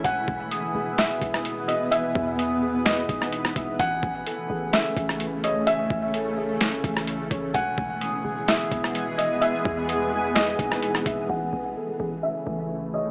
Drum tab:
HH |x---x---x-x-x-x-|x---x---x-x-x-x-|x---x---x-x-x-x-|x---x---x-x-x-x-|
SD |--------o--r----|--------o--r-r--|--------o--r----|--------o--r----|
BD |o-o-------o-----|--o-------o---o-|o-o-------o-----|--o-------o---o-|

HH |x---x---x-x-x-x-|x---x---x-x-x-x-|----------------|
SD |--------o--r----|--------o--r-r--|----------------|
BD |o-o-------o-----|--o-------o---o-|----------------|